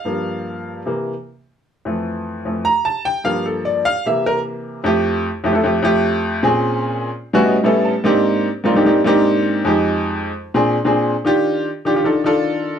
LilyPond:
\new Staff \with { instrumentName = "Grand piano" } { \time 4/4 \key f \major \tempo 4 = 150 << { f''2 r2 | r2 r8 bes''8 a''8 g''8 | f''8 a'8 d''8 f''8 e''8 bes'8 r4 | r1 |
r2 r8 ees''8 e''8 a''8 | r1 | r1 | r1 | } \\ { <g, f bes>2 <c e bes>8 r4. | r8 <f, e a>4. <f, e a>8 r4. | <g, f bes>4. r8 <c e bes>2 | <f, a e' g'>4 r8 <f, a e' g'>16 <f, a e' a'>16 <f, a e' g'>16 r16 <f, a e' g'>4. |
<bes, c' des' aes'>4. r8. <a, g b cis' e' fis'>8 r16 <a, g b cis' e' a'>8. r16 | <aes, bes c' d' ees' g'>4 r8 <aes, bes c' d' ees' f'>16 <aes, bes c' d' ees' g'>16 <aes, bes c' d' ees' g'>16 r16 <aes, bes c' d' ees' g'>4. | <f, aes ees' g'>4. r8. <bes, c' d' aes'>8 r16 <bes, c' d' aes'>8. r16 | <ees d' f' g'>4 r8 <ees d' f' g'>16 <ees d' f' g'>16 <ees d' f' a'>16 r16 <ees d' f' a'>4. | } >> }